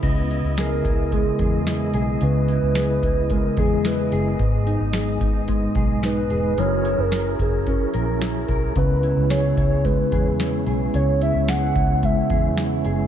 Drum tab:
CC |x-------|--------|--------|--------|
HH |xxxxxxxx|xxxxxxxx|xxxxxxxx|xxxxxxxx|
SD |--o---o-|--o---o-|--o---o-|--o---o-|
BD |o--ooo--|---ooo--|o--ooo--|---oo--o|

CC |--------|--------|
HH |xxxxxxxx|xxxxxxxx|
SD |--o---o-|--o---o-|
BD |o--ooo--|---ooo--|